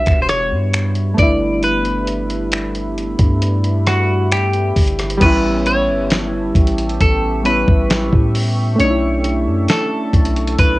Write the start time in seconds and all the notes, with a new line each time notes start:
Already playing: G3 B3 D4 F#4 E5 B5
0.06 E1, finger snap, kick, closed hi-hat
0.22 C5
0.29 C#5, cross-stick, closed hi-hat
0.51 G2
0.74 finger snap, closed hi-hat
0.95 closed hi-hat
1.14 A3 B3, kick
1.18 G1 D4 E4 D5, closed hi-hat
1.63 B4, closed hi-hat
1.85 closed hi-hat
2.08 closed hi-hat
2.30 closed hi-hat
2.52 finger snap, closed hi-hat
2.75 closed hi-hat
2.98 closed hi-hat
3.19 G2, kick, closed hi-hat
3.42 closed hi-hat
3.64 closed hi-hat
3.87 F#4, cross-stick, closed hi-hat
4.32 G4, finger snap, closed hi-hat
4.53 closed hi-hat
4.76 G1, kick, closed hi-hat, open hi-hat
4.88 closed hi-hat
4.99 cross-stick, closed hi-hat
5.10 closed hi-hat
5.17 A1 G3 B3 A5 C#6, kick, closed hi-hat, crash
5.21 C#4 G4 B4 E5
5.25 E4
5.66 C#5, closed hi-hat
5.88 G1
6.10 snare, closed hi-hat
6.55 A1, kick, closed hi-hat
6.67 closed hi-hat
6.78 closed hi-hat
6.89 closed hi-hat
7.00 A1 A4 G5, kick, closed hi-hat
7.43 G3 B3 C#4 E4 B4, closed hi-hat
7.68 A1, kick
7.90 snare, closed hi-hat
8.13 A2, kick
8.35 open hi-hat
8.76 A3 C#4 A4, closed hi-hat
8.80 B1 D4 D#4 C#5 A5
8.90 E4
9.24 closed hi-hat
9.47 F#2
9.68 A4, snare, closed hi-hat
10.13 B1, kick, closed hi-hat
10.25 closed hi-hat
10.36 closed hi-hat
10.47 closed hi-hat
10.59 B1 B4 B5, kick, closed hi-hat